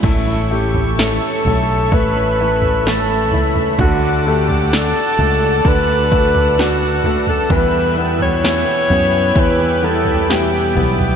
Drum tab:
CC |x---------------|----------------|----------------|
SD |----o-------o---|----o-------o---|----o-------o---|
FT |o--o--o-o--o--oo|o--o--o-o--o--oo|o--o--o-o--o--oo|
BD |o-------o-------|o-------o-o-----|o-------o-------|